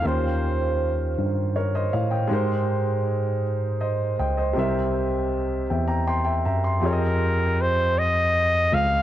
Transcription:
<<
  \new Staff \with { instrumentName = "Grand piano" } { \time 6/8 \key f \minor \tempo 4. = 53 << { r2 <bes' des''>16 <c'' ees''>16 <des'' f''>16 <ees'' g''>16~ | <ees'' g''>16 r4. r16 <c'' ees''>8 <ees'' g''>16 <c'' ees''>16~ | <c'' ees''>16 r4 r16 <e'' g''>16 <g'' bes''>16 <g'' c'''>16 <e'' g''>16 <e'' g'' bes''>16 c'''16~ | c'''16 r2 r8. | } \\ { <ees des' f' g' bes' c''>2. | <aes ees' g' bes' c''>2. | <c c' g' bes' e''>2. | <f c' g' aes' des'' ees''>2. | } >> }
  \new Staff \with { instrumentName = "Flugelhorn" } { \time 6/8 \key f \minor c''4. r4. | r2. | r2. | bes'4 c''8 ees''4 f''8 | }
  \new Staff \with { instrumentName = "Tine electric piano" } { \clef bass \time 6/8 \key f \minor ees,4. g,4 a,8 | aes,2~ aes,8 des,8 | c,4. e,4 ges,8 | f,2~ f,8 des,8 | }
>>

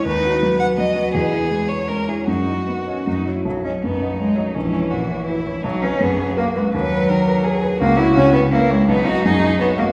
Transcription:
<<
  \new Staff \with { instrumentName = "Grand piano" } { \time 3/4 \key b \major \tempo 4 = 165 dis,8 fis'8 fis8 b'8 fis8 fis'8 | e,8 e'8 gis8 cis''8 gis8 e'8 | fis,8 dis'8 b8 dis''8 fis,8 <fis' cis''>8 | b,,8 dis''8 fis,8 dis''8 cis''8 dis''8 |
ais,,8 cis''8 ais,8 cis''8 b'8 cis''8 | b,,8 b'8 fis,8 b'8 ais'8 b'8 | dis,8 b'8 dis8 b'8 ais'8 b'8 | cis,8 cis''8 cis8 cis''8 b'8 cis''8 |
b,,8 dis''8 fis,8 dis''8 cis''8 dis''8 | }
  \new Staff \with { instrumentName = "Violin" } { \time 3/4 \key b \major b'4. fis''8 dis''4 | gis'4. cis''8 ais'8 gis'8 | fis'2~ fis'8 r8 | r4 dis'2 |
cis'4 fis'4 e'4 | dis'4 gis'4 fis'4 | b'4 ais'4 gis'4 | fis'2 e'4 |
dis'4 gis'4 fis'4 | }
  \new Staff \with { instrumentName = "Cello" } { \time 3/4 \key b \major dis'4 b2~ | b2 cis'4 | dis'4 b8 cis'8 dis'8 e'8 | fis8 cis'8 b4 gis8 fis8 |
e2~ e8 r8 | fis8 cis'8 b4 ais8 gis8 | fis2~ fis8 r8 | ais8 e'8 cis'8 b8 ais8 gis8 |
b8 fis'8 dis'4 b8 ais8 | }
>>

